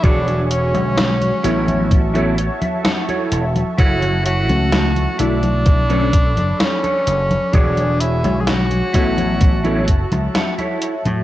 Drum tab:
HH |xxxxxxxxxxxxxxxx|xxxxxxxxxxxxxxxx|xxxxxxxxxxxxxxxx|
SD |----o-o-----o---|----o-------o---|----o-o-----o---|
CG |oo-ooo-ooo-ooo-o|oo-ooo-ooo-ooo-o|oo-ooo-ooo-ooo-o|
BD |o-------o-------|o-------o-o-----|o-----o-o-o-----|